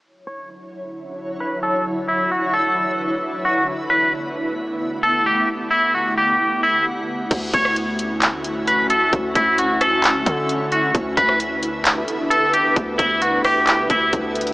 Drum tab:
CC |--------------------------------|--------------------------------|--------------------------------|--------------------------------|
HH |--------------------------------|--------------------------------|--------------------------------|--------------------------------|
CP |--------------------------------|--------------------------------|--------------------------------|--------------------------------|
SD |--------------------------------|--------------------------------|--------------------------------|--------------------------------|
BD |--------------------------------|--------------------------------|--------------------------------|--------------------------------|

CC |x-------------------------------|--------------------------------|--------------------------------|--------------------------------|
HH |x---x---x---x---x---x---x---x---|x---x---x---x---x---x---x---x---|x---x---x---x---x---x---x---x---|x---x---x---o---x---x---x---xxx-|
CP |----------------x---------------|----------------x---------------|----------------x---------------|----------------x---------------|
SD |------r-------------------------|------------r-------------------|------r-------------------------|------------r-------------------|
BD |o---o---------------------------|o---o---------------o-----------|o---o---------------------------|o---o---------------o---o-------|